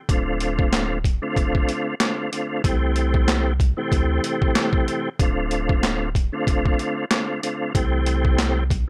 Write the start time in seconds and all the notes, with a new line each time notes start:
0.09 D1 D3 A3 C4 F4, kick, closed hi-hat
0.40 closed hi-hat
0.59 kick
0.73 snare, clap, closed hi-hat
1.04 kick, closed hi-hat
1.22 D3 A3 C4 F4
1.36 E1, kick, closed hi-hat
1.55 kick
1.69 closed hi-hat
2.00 D3 A3 C4 F4, snare, clap, closed hi-hat
2.32 D3 A3 C4 F4, closed hi-hat
2.63 C2 E3 A3 C4 G4, kick, closed hi-hat
2.96 closed hi-hat
3.14 kick
3.28 snare, clap, closed hi-hat
3.60 kick, closed hi-hat
3.77 C2 E3 A3 C4 G4
3.92 D2, kick, closed hi-hat
4.24 closed hi-hat
4.42 kick
4.55 snare, clap, closed hi-hat
4.73 kick
4.88 closed hi-hat
5.19 D1 D3 A3 C4 F4, kick, closed hi-hat
5.51 closed hi-hat
5.69 kick
5.83 snare, clap, closed hi-hat
6.15 kick, closed hi-hat
6.32 D3 A3 C4 F4
6.47 E1, kick, closed hi-hat
6.66 kick
6.79 closed hi-hat
7.11 D3 A3 C4 F4, snare, clap, closed hi-hat
7.42 D3 A3 C4 F4, closed hi-hat
7.74 C2 E3 A3 C4 G4, kick, closed hi-hat
8.06 closed hi-hat
8.25 kick
8.39 snare, clap, closed hi-hat
8.70 kick, closed hi-hat